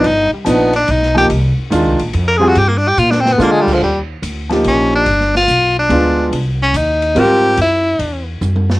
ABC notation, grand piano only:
X:1
M:3/4
L:1/8
Q:"Swing" 1/4=143
K:Cm
V:1 name="Grand piano"
z2 [F,=B,DE] z2 [F,_B,EG] | z2 [E,A,DF] z2 [G,CFA] | z4 [D,A,DF]2 | [K:Eb] z3 [F,B,EG]3 |
z4 [A,=B,DF]2 | z4 [G,CFB]2 | z6 |]